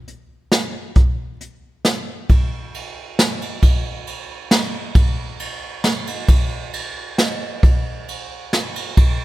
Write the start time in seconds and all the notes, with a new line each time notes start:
0.08 closed hi-hat
0.52 snare, closed hi-hat
0.96 kick, closed hi-hat
1.41 closed hi-hat
1.85 snare, closed hi-hat
2.29 kick, ride
2.74 ride
3.19 snare, ride
3.42 ride
3.62 kick, ride
4.07 ride
4.51 snare, ride
4.95 kick, ride
5.40 ride
5.84 snare, ride
6.07 ride
6.28 kick, ride
6.73 ride
7.18 snare, ride
7.63 kick, ride
8.08 ride
8.53 snare, ride
8.76 ride
8.97 kick, ride